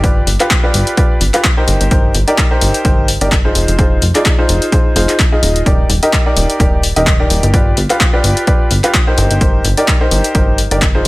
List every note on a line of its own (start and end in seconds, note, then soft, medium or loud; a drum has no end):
0.00 0.24 G1 medium
0.00 0.25 F4 medium
0.00 0.25 G4 medium
0.00 0.25 B4 medium
0.00 0.25 D5 medium
0.00 kick loud
0.00 closed hi-hat medium
0.27 0.38 G1 medium
0.27 open hi-hat loud
0.40 0.60 F4 medium
0.40 0.60 G4 medium
0.40 0.60 B4 medium
0.40 0.60 F5 medium
0.40 clap soft
0.40 closed hi-hat medium
0.51 kick loud
0.51 clap loud
0.51 closed hi-hat medium
0.64 0.95 F4 medium
0.64 0.95 G4 medium
0.64 0.95 B4 medium
0.64 0.95 D5 medium
0.74 0.85 G1 medium
0.74 open hi-hat loud
0.87 closed hi-hat soft
0.97 1.19 F4 medium
0.97 1.19 G4 medium
0.97 1.19 B4 medium
0.97 1.19 D5 medium
0.97 kick loud
0.97 closed hi-hat medium
1.21 1.32 G1 medium
1.21 open hi-hat loud
1.34 1.46 F4 medium
1.34 1.46 G4 medium
1.34 1.46 B4 medium
1.34 1.46 F5 medium
1.34 clap soft
1.34 closed hi-hat medium
1.44 kick loud
1.44 clap loud
1.44 closed hi-hat medium
1.57 1.89 D#4 medium
1.57 1.89 G4 medium
1.57 1.89 A#4 medium
1.57 1.89 C5 medium
1.68 1.78 G1 loud
1.68 open hi-hat loud
1.81 1.89 G1 loud
1.81 closed hi-hat medium
1.91 2.11 G1 medium
1.91 2.13 D#4 medium
1.91 2.13 G4 medium
1.91 2.13 A#4 medium
1.91 2.13 C5 medium
1.91 kick loud
1.91 closed hi-hat medium
2.15 2.25 G1 medium
2.15 open hi-hat loud
2.27 2.48 D#4 medium
2.27 2.48 G4 medium
2.27 2.48 A#4 medium
2.27 2.48 D5 medium
2.27 closed hi-hat soft
2.38 kick loud
2.38 clap loud
2.38 closed hi-hat medium
2.51 2.82 D#4 medium
2.51 2.82 G4 medium
2.51 2.82 A#4 medium
2.51 2.82 C5 medium
2.61 2.72 G1 medium
2.61 open hi-hat loud
2.74 closed hi-hat soft
2.85 3.18 G1 medium
2.85 3.07 D#4 medium
2.85 3.07 G4 medium
2.85 3.07 A#4 medium
2.85 3.07 C5 medium
2.85 kick loud
2.85 closed hi-hat medium
3.08 open hi-hat loud
3.21 3.52 G1 loud
3.21 3.34 D#4 medium
3.21 3.34 G4 medium
3.21 3.34 A#4 medium
3.21 3.34 D5 medium
3.21 closed hi-hat soft
3.32 kick loud
3.32 clap loud
3.32 closed hi-hat medium
3.45 3.76 D#4 medium
3.45 3.76 F4 medium
3.45 3.76 G#4 medium
3.45 3.76 C5 medium
3.55 3.66 F1 medium
3.55 open hi-hat loud
3.68 3.99 F1 medium
3.68 closed hi-hat soft
3.79 4.00 D#4 medium
3.79 4.00 F4 medium
3.79 4.00 G#4 medium
3.79 4.00 C5 medium
3.79 kick loud
3.79 closed hi-hat medium
4.02 4.13 F1 medium
4.02 open hi-hat loud
4.15 4.35 D#4 medium
4.15 4.35 F4 medium
4.15 4.35 G#4 medium
4.15 4.35 D5 medium
4.15 clap soft
4.15 closed hi-hat soft
4.25 kick loud
4.25 clap loud
4.25 closed hi-hat medium
4.38 4.70 D#4 medium
4.38 4.70 F4 medium
4.38 4.70 G#4 medium
4.38 4.70 C5 medium
4.49 4.60 F1 medium
4.49 open hi-hat loud
4.62 closed hi-hat soft
4.72 4.94 D#4 medium
4.72 4.94 F4 medium
4.72 4.94 G#4 medium
4.72 4.94 C5 medium
4.72 kick loud
4.72 closed hi-hat medium
4.96 5.07 F1 loud
4.96 5.18 D#4 medium
4.96 5.18 F4 medium
4.96 5.18 G#4 medium
4.96 5.18 C5 medium
4.96 open hi-hat loud
5.09 clap soft
5.09 closed hi-hat soft
5.19 kick loud
5.19 clap loud
5.19 closed hi-hat medium
5.32 5.64 D#4 medium
5.32 5.64 F4 medium
5.32 5.64 G#4 medium
5.32 5.64 D#5 medium
5.43 5.63 D#1 loud
5.43 open hi-hat loud
5.56 closed hi-hat soft
5.66 5.86 D#1 medium
5.66 5.88 D#4 medium
5.66 5.88 G4 medium
5.66 5.88 A#4 medium
5.66 5.88 D5 medium
5.66 kick loud
5.66 closed hi-hat medium
5.89 6.00 D#1 medium
5.89 open hi-hat medium
6.03 6.23 D#4 medium
6.03 6.23 G4 medium
6.03 6.23 A#4 medium
6.03 6.23 D#5 medium
6.03 closed hi-hat soft
6.13 kick loud
6.13 clap loud
6.13 closed hi-hat medium
6.26 6.57 D#4 medium
6.26 6.57 G4 medium
6.26 6.57 A#4 medium
6.26 6.57 D5 medium
6.36 6.47 D#1 medium
6.36 open hi-hat loud
6.50 closed hi-hat soft
6.60 6.93 D#1 medium
6.60 6.82 D#4 medium
6.60 6.82 G4 medium
6.60 6.82 A#4 medium
6.60 6.82 D5 medium
6.60 kick loud
6.60 closed hi-hat medium
6.83 open hi-hat loud
6.96 7.27 D#1 loud
6.96 7.09 D#4 medium
6.96 7.09 G4 medium
6.96 7.09 A#4 medium
6.96 7.09 D#5 medium
6.96 closed hi-hat soft
7.07 kick loud
7.07 clap loud
7.07 closed hi-hat medium
7.20 7.51 D#4 medium
7.20 7.51 G4 medium
7.20 7.51 A#4 medium
7.20 7.51 D5 medium
7.30 7.41 D#1 medium
7.30 open hi-hat loud
7.43 7.74 G1 medium
7.43 closed hi-hat soft
7.54 7.75 F4 medium
7.54 7.75 G4 medium
7.54 7.75 B4 medium
7.54 7.75 D5 medium
7.54 kick loud
7.54 closed hi-hat medium
7.77 7.88 G1 medium
7.77 open hi-hat medium
7.90 8.10 F4 medium
7.90 8.10 G4 medium
7.90 8.10 B4 medium
7.90 8.10 F5 medium
7.90 clap soft
7.90 closed hi-hat soft
8.00 kick loud
8.00 clap loud
8.00 closed hi-hat medium
8.13 8.45 F4 medium
8.13 8.45 G4 medium
8.13 8.45 B4 medium
8.13 8.45 D5 medium
8.24 8.35 G1 medium
8.24 open hi-hat loud
8.37 closed hi-hat soft
8.47 8.69 F4 medium
8.47 8.69 G4 medium
8.47 8.69 B4 medium
8.47 8.69 D5 medium
8.47 kick loud
8.47 closed hi-hat medium
8.71 8.82 G1 medium
8.71 open hi-hat loud
8.84 8.96 F4 medium
8.84 8.96 G4 medium
8.84 8.96 B4 medium
8.84 8.96 F5 medium
8.84 clap soft
8.84 closed hi-hat medium
8.94 kick loud
8.94 clap loud
8.94 closed hi-hat medium
9.07 9.39 D#4 medium
9.07 9.39 G4 medium
9.07 9.39 A#4 medium
9.07 9.39 C5 medium
9.18 9.28 G1 loud
9.18 open hi-hat medium
9.31 9.39 G1 medium
9.31 closed hi-hat soft
9.41 9.61 G1 medium
9.41 9.63 D#4 medium
9.41 9.63 G4 medium
9.41 9.63 A#4 medium
9.41 9.63 C5 medium
9.41 kick loud
9.41 closed hi-hat medium
9.64 9.75 G1 medium
9.64 open hi-hat loud
9.77 9.98 D#4 medium
9.77 9.98 G4 medium
9.77 9.98 A#4 medium
9.77 9.98 D5 medium
9.77 closed hi-hat medium
9.88 kick loud
9.88 clap loud
9.88 closed hi-hat medium
10.01 10.32 D#4 medium
10.01 10.32 G4 medium
10.01 10.32 A#4 medium
10.01 10.32 C5 medium
10.11 10.22 G1 medium
10.11 open hi-hat loud
10.24 closed hi-hat medium
10.35 10.68 G1 loud
10.35 10.57 D#4 medium
10.35 10.57 G4 medium
10.35 10.57 A#4 medium
10.35 10.57 C5 medium
10.35 kick loud
10.35 closed hi-hat medium
10.58 open hi-hat loud
10.71 11.02 G1 loud
10.71 10.84 D#4 medium
10.71 10.84 G4 medium
10.71 10.84 A#4 medium
10.71 10.84 D5 medium
10.71 closed hi-hat medium
10.82 kick loud
10.82 clap loud
10.82 closed hi-hat medium
10.95 11.08 D#4 medium
10.95 11.08 F4 medium
10.95 11.08 G#4 medium
10.95 11.08 C5 medium